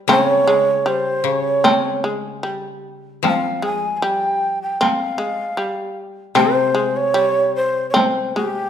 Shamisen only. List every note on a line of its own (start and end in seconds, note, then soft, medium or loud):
0.09 0.48 C4 medium
0.47 0.85 G#3 medium
0.86 1.64 G3 medium
1.64 2.04 C4 medium
2.04 2.43 G#3 medium
2.43 3.24 G3 medium
3.24 3.64 C4 medium
3.62 4.02 G#3 medium
4.02 4.81 G3 medium
4.81 5.20 C4 medium
5.18 5.57 G#3 medium
5.57 6.35 G3 medium
6.35 6.75 C4 medium
6.75 7.14 G#3 medium
7.14 7.95 G3 medium
7.94 8.35 C4 medium
8.36 8.70 G#3 medium